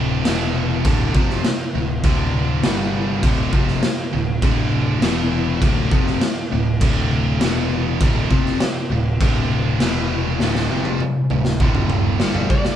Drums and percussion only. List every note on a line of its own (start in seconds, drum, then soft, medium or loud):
0.25 snare loud
0.25 crash medium
0.85 kick loud
0.85 crash medium
1.15 kick loud
1.30 snare soft
1.44 snare loud
1.44 crash medium
2.04 kick loud
2.04 crash medium
2.63 snare loud
2.63 crash medium
3.23 kick loud
3.23 crash medium
3.53 kick loud
3.68 snare soft
3.83 snare loud
3.83 crash medium
4.42 kick loud
4.42 crash medium
5.02 snare loud
5.02 crash medium
5.62 kick loud
5.62 crash medium
5.91 kick loud
6.07 snare soft
6.21 snare medium
6.21 crash medium
6.81 kick loud
6.81 crash medium
7.41 snare loud
7.41 crash medium
8.01 kick loud
8.01 crash medium
8.31 kick loud
8.46 snare soft
8.60 snare loud
8.60 crash medium
9.21 kick loud
9.21 crash medium
9.80 snare loud
9.80 crash medium
10.40 snare medium
10.55 snare medium
10.85 high tom medium
11.00 mid tom medium
11.30 mid tom medium
11.45 snare medium
11.60 kick loud
11.75 mid tom medium
11.90 mid tom medium
12.20 snare loud
12.34 floor tom medium
12.50 kick loud
12.65 snare medium